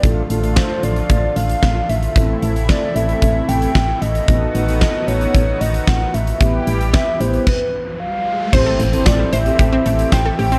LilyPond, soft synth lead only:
\new Staff \with { instrumentName = "Soft synth lead" } { \time 4/4 \key a \minor \tempo 4 = 113 d''8 r8 c''8 d''4 f''4 e''8~ | e''8 r8 d''8 e''4 g''4 dis''8~ | dis''4 dis''8 cis''4 dis''8 fis''8 e''8~ | e''8 r8 e''8 c''8 b'4 f''4 |
c''4 d''8 e''4. g''4 | }